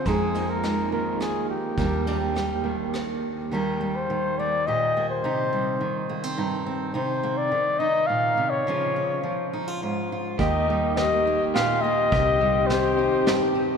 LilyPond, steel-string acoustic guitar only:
\new Staff \with { instrumentName = "Steel-string acoustic guitar" } { \clef bass \time 3/4 \key ees \major \tempo 4 = 104 << { <aes bes ees'>8 bes8 aes2 | <g d'>8 d'8 g2 | <ees g bes g'>8 g4 bes8 g'8 bes8 | ees'8 g4 bes16 c'16 ees'8 c'8 |
ees'8 bes4 ees'4. | <f des' f'>8 des'4 ees'16 f'16 f'8 f'8 | g'8 g4 bes8 g'8 bes8 | g'8 g4 ees'8 g'8 ees'8 | } \\ { f,4. ees4. | ees,4. ees4. | ees,4 ees4 bes,4 | c4 ees4 g,4 |
c4 ees4 bes,8 c8 | des4 f4 aes,4 | ees,4 ees4 bes,4 | c4 ees4 g,4 | } >> }